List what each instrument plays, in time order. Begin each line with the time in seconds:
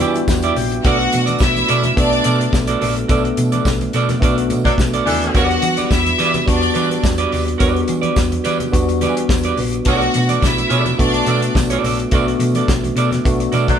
Already playing: tine electric piano G3 B3 D4 F4 F#4 B4 D5 E5
0.00 fingered electric bass E3, clean electric guitar E4 G4 D5, tine electric piano G5, tambourine, high conga
0.14 muted clean electric guitar stroke, closed hi-hat, tambourine
0.28 fingered electric bass E2, tine electric piano F#5, muted clean electric guitar stroke, kick, snare, tambourine, muted conga, high conga
0.43 clean electric guitar E4 G4 D5, tine electric piano E5, closed hi-hat, muted conga
0.55 fingered electric bass A#1, tine electric piano G5, muted clean electric guitar stroke, open hi-hat, tambourine, low conga
0.72 muted clean electric guitar stroke, closed hi-hat
0.83 fingered electric bass B1, tine electric piano A3 B3 D4 F#4, string section F#4 F#5, clean electric guitar F#4 A4 D5, kick, closed hi-hat, tambourine, muted conga
0.99 muted clean electric guitar stroke, closed hi-hat, muted conga
1.12 fingered electric bass B2, muted clean electric guitar stroke, closed hi-hat, tambourine, high conga
1.26 clean electric guitar F#4 A4 D5, closed hi-hat, tambourine, high conga
1.39 fingered electric bass B1, string section E4 E5, kick, snare, tambourine
1.55 muted clean electric guitar stroke, closed hi-hat, muted conga, high conga
1.68 fingered electric bass B2, clean electric guitar F#4 A4 D5, closed hi-hat, tambourine
1.83 muted clean electric guitar stroke, closed hi-hat, tambourine, high conga, low conga
1.97 fingered electric bass B1, tine electric piano A3 B3 D4 A4, string section D4 D5, kick, closed hi-hat, tambourine, muted conga
2.11 muted clean electric guitar stroke, closed hi-hat, muted conga
2.24 fingered electric bass B2, clean electric guitar F#4 A4 D5, closed hi-hat, tambourine, high conga
2.40 muted clean electric guitar stroke, closed hi-hat
2.53 fingered electric bass B1, muted clean electric guitar stroke, kick, snare, tambourine, muted conga, high conga
2.67 clean electric guitar F#4 A4 D5, closed hi-hat, muted conga
2.80 fingered electric bass A#1, clean electric guitar F#4 A4 D5, open hi-hat, tambourine, low conga
2.96 muted clean electric guitar stroke, closed hi-hat
3.08 fingered electric bass B1, tine electric piano A3 B3 D4 A4, clean electric guitar F#4 A4 D5, kick, closed hi-hat, tambourine, muted conga
3.24 muted clean electric guitar stroke, closed hi-hat, muted conga
3.37 fingered electric bass B2, muted clean electric guitar stroke, closed hi-hat, tambourine, high conga
3.52 clean electric guitar F#4 A4 D5, closed hi-hat, tambourine, high conga
3.65 fingered electric bass B1, kick, snare, tambourine
3.81 muted clean electric guitar stroke, closed hi-hat, muted conga, high conga
3.93 fingered electric bass B2, clean electric guitar F#4 A4 D5, closed hi-hat, tambourine
4.09 muted clean electric guitar stroke, snare, closed hi-hat, tambourine, high conga, low conga
4.20 fingered electric bass B1, tine electric piano A3 B3 D4 F#4, clean electric guitar F#4 A4 D5, kick, closed hi-hat, tambourine
4.37 muted clean electric guitar stroke, closed hi-hat, muted conga
4.50 fingered electric bass B2, muted clean electric guitar stroke, closed hi-hat, tambourine, high conga
4.65 horn section F#3 D4 A4, clean electric guitar F#4 A4 D5, kick, closed hi-hat
4.78 fingered electric bass B1, muted clean electric guitar stroke, kick, snare, tambourine, muted conga, high conga
4.93 clean electric guitar F#4 A4 D5, closed hi-hat, muted conga
5.06 fingered electric bass D#2, horn section E3 D4 A4, muted clean electric guitar stroke, open hi-hat, tambourine, low conga
5.22 muted clean electric guitar stroke, closed hi-hat
5.34 fingered electric bass E2, tine electric piano G3 B3 D4 F#4, string section F#4 F#5, clean electric guitar G4 B4 D5, kick, closed hi-hat, tambourine, muted conga
5.50 muted clean electric guitar stroke, closed hi-hat
5.62 fingered electric bass E3, muted clean electric guitar stroke, closed hi-hat, tambourine, high conga
5.77 clean electric guitar G4 B4 D5, closed hi-hat, high conga
5.91 fingered electric bass E2, string section E4 E5, kick, snare, tambourine
6.06 muted clean electric guitar stroke, closed hi-hat, muted conga, high conga
6.18 fingered electric bass E3, clean electric guitar G4 B4 D5, closed hi-hat, tambourine
6.34 muted clean electric guitar stroke, closed hi-hat, tambourine, high conga, low conga
6.46 fingered electric bass E2, tine electric piano G3 B3 D4 F#4, string section D4 D5, kick, closed hi-hat, tambourine, muted conga
6.62 muted clean electric guitar stroke, closed hi-hat, muted conga
6.74 fingered electric bass E3, clean electric guitar G4 B4 D5, closed hi-hat, tambourine, high conga
6.90 muted clean electric guitar stroke, closed hi-hat, tambourine
7.03 fingered electric bass E2, muted clean electric guitar stroke, kick, snare, tambourine, muted conga, high conga
7.18 clean electric guitar G4 B4 D5, closed hi-hat, muted conga
7.31 fingered electric bass D#2, clean electric guitar G4 B4 D5, open hi-hat, tambourine, low conga
7.46 muted clean electric guitar stroke, closed hi-hat
7.58 fingered electric bass E2, tine electric piano G3 B3 D4 F#4, clean electric guitar G4 B4 D5, kick, closed hi-hat, tambourine, muted conga
7.74 muted clean electric guitar stroke, closed hi-hat, muted conga
7.88 fingered electric bass E3, muted clean electric guitar stroke, closed hi-hat, tambourine, high conga
8.02 clean electric guitar G4 B4 D5, closed hi-hat, high conga
8.16 fingered electric bass E2, kick, snare, tambourine, muted conga
8.32 muted clean electric guitar stroke, closed hi-hat, high conga
8.44 fingered electric bass E3, clean electric guitar G4 B4 D5, closed hi-hat, tambourine
8.59 muted clean electric guitar stroke, closed hi-hat, tambourine, high conga, low conga
8.72 fingered electric bass E2, tine electric piano G3 B3 D4 F#4, kick, closed hi-hat, tambourine
8.89 muted clean electric guitar stroke, closed hi-hat, tambourine
9.01 fingered electric bass E3, clean electric guitar G4 B4 D5, closed hi-hat, tambourine, high conga
9.17 muted clean electric guitar stroke, closed hi-hat
9.29 fingered electric bass E2, muted clean electric guitar stroke, kick, snare, tambourine, muted conga, high conga
9.43 clean electric guitar G4 B4 D5, closed hi-hat
9.56 fingered electric bass A#1, muted clean electric guitar stroke, open hi-hat, tambourine, low conga
9.73 muted clean electric guitar stroke, closed hi-hat
9.85 fingered electric bass B1, tine electric piano A3 B3 D4 F#4, string section F#4 F#5, clean electric guitar F#4 A4 D5, kick, closed hi-hat, tambourine
10.01 muted clean electric guitar stroke, closed hi-hat, muted conga
10.14 fingered electric bass B2, muted clean electric guitar stroke, closed hi-hat, tambourine, high conga
10.29 clean electric guitar F#4 A4 D5, closed hi-hat, tambourine, high conga
10.42 fingered electric bass B1, string section E4 E5, kick, snare, tambourine
10.58 muted clean electric guitar stroke, closed hi-hat, muted conga, high conga
10.69 fingered electric bass B2, clean electric guitar F#4 A4 D5, closed hi-hat, tambourine
10.85 muted clean electric guitar stroke, closed hi-hat, tambourine, high conga, low conga
10.98 fingered electric bass B1, tine electric piano A3 B3 D4 F#4, string section D4 D5, kick, closed hi-hat, tambourine, muted conga
11.13 muted clean electric guitar stroke, closed hi-hat, tambourine, muted conga
11.26 fingered electric bass B2, clean electric guitar F#4 A4 D5, closed hi-hat, tambourine, high conga
11.42 muted clean electric guitar stroke, closed hi-hat
11.55 fingered electric bass B1, muted clean electric guitar stroke, kick, snare, tambourine, muted conga, high conga
11.70 clean electric guitar F#4 A4 D5, closed hi-hat, muted conga
11.82 fingered electric bass A#1, clean electric guitar F#4 A4 D5, open hi-hat, tambourine, low conga
12.00 muted clean electric guitar stroke, closed hi-hat
12.11 fingered electric bass B1, tine electric piano A3 B3 D4 F#4, clean electric guitar F#4 A4 D5, kick, closed hi-hat, tambourine
12.26 muted clean electric guitar stroke, closed hi-hat, muted conga
12.39 fingered electric bass B2, muted clean electric guitar stroke, closed hi-hat, tambourine, high conga
12.54 clean electric guitar F#4 A4 D5, closed hi-hat, high conga
12.68 fingered electric bass B1, kick, snare, tambourine, muted conga
12.83 muted clean electric guitar stroke, closed hi-hat, high conga, low conga
12.95 fingered electric bass B2, clean electric guitar F#4 A4 D5, closed hi-hat, tambourine
13.11 muted clean electric guitar stroke, snare, closed hi-hat, tambourine, high conga, low conga
13.24 fingered electric bass B1, tine electric piano A3 B3 D4 F#4, muted clean electric guitar stroke, kick, closed hi-hat, tambourine
13.39 muted clean electric guitar stroke, closed hi-hat, tambourine, muted conga
13.52 fingered electric bass B2, clean electric guitar F#4 A4 D5, closed hi-hat, tambourine, high conga
13.68 horn section F#3 D4 A4, kick, closed hi-hat